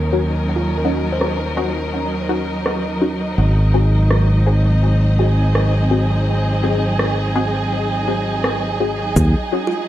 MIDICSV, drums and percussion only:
0, 0, Header, 1, 2, 480
1, 0, Start_track
1, 0, Tempo, 722892
1, 324, Time_signature, 4, 2, 24, 8
1, 6562, End_track
2, 0, Start_track
2, 0, Title_t, "Drums"
2, 324, Note_on_c, 9, 69, 50
2, 390, Note_off_c, 9, 69, 0
2, 805, Note_on_c, 9, 37, 69
2, 871, Note_off_c, 9, 37, 0
2, 1285, Note_on_c, 9, 69, 45
2, 1351, Note_off_c, 9, 69, 0
2, 1765, Note_on_c, 9, 37, 72
2, 1765, Note_on_c, 9, 69, 47
2, 1831, Note_off_c, 9, 37, 0
2, 1831, Note_off_c, 9, 69, 0
2, 2244, Note_on_c, 9, 69, 49
2, 2311, Note_off_c, 9, 69, 0
2, 2726, Note_on_c, 9, 37, 74
2, 2726, Note_on_c, 9, 69, 46
2, 2792, Note_off_c, 9, 37, 0
2, 2792, Note_off_c, 9, 69, 0
2, 3204, Note_on_c, 9, 69, 45
2, 3271, Note_off_c, 9, 69, 0
2, 3446, Note_on_c, 9, 69, 24
2, 3512, Note_off_c, 9, 69, 0
2, 3686, Note_on_c, 9, 37, 76
2, 3686, Note_on_c, 9, 69, 48
2, 3752, Note_off_c, 9, 37, 0
2, 3752, Note_off_c, 9, 69, 0
2, 4164, Note_on_c, 9, 69, 46
2, 4230, Note_off_c, 9, 69, 0
2, 4643, Note_on_c, 9, 37, 74
2, 4643, Note_on_c, 9, 69, 44
2, 4710, Note_off_c, 9, 37, 0
2, 4710, Note_off_c, 9, 69, 0
2, 5124, Note_on_c, 9, 69, 45
2, 5190, Note_off_c, 9, 69, 0
2, 5363, Note_on_c, 9, 69, 25
2, 5430, Note_off_c, 9, 69, 0
2, 5605, Note_on_c, 9, 37, 72
2, 5605, Note_on_c, 9, 69, 46
2, 5671, Note_off_c, 9, 37, 0
2, 5671, Note_off_c, 9, 69, 0
2, 6084, Note_on_c, 9, 36, 103
2, 6085, Note_on_c, 9, 69, 56
2, 6150, Note_off_c, 9, 36, 0
2, 6151, Note_off_c, 9, 69, 0
2, 6562, End_track
0, 0, End_of_file